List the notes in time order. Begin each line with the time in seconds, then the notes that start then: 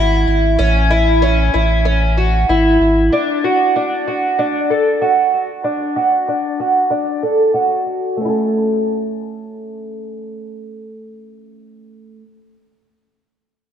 Already playing: G#1 E4
0.28 G#1
0.59 A1 C#4
0.91 E4
1.22 C#4
1.54 A1 E4
1.85 C#4
2.18 F#4
2.49 G#1 E4
2.81 G#1
3.13 D4
3.44 F#4
3.76 D4
4.07 F#4
4.39 D4
4.70 A4
5.01 F#4
5.64 D4
5.96 F#4
6.28 D4
6.60 F#4
6.90 D4
7.23 A4
7.54 F#4
8.17 A3
8.21 C#4
8.25 E4 A4